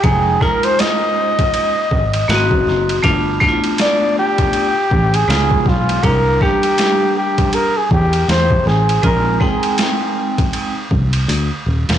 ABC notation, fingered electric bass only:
X:1
M:4/4
L:1/16
Q:"Swing 16ths" 1/4=80
K:Fdor
V:1 name="Fingered electric bass" clef=bass
F,,,2 z8 A,,,2 A,,,2 _G,,,2 | G,,,2 z8 =A,,,2 _D,,2 _C,,2 | C,,2 z8 =E,,2 E,,2 =A,,,2 | B,,,2 z8 C,,2 D,, z E,,, =E,,, |]